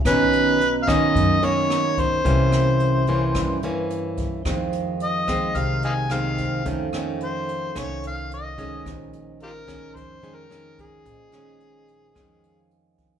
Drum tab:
HH |xxxxxxxx|xxxxxxxx|xxxxxxxx|xxxxxxxx|
SD |r--r--r-|-r--r---|r--r--r-|-r--r---|
BD |o--oo--o|o---o--o|o--oo--o|o---o--o|

HH |xxxxxxxx|xxxxxxxx|
SD |r--r--r-|-r--r---|
BD |o--oo--o|o---o--o|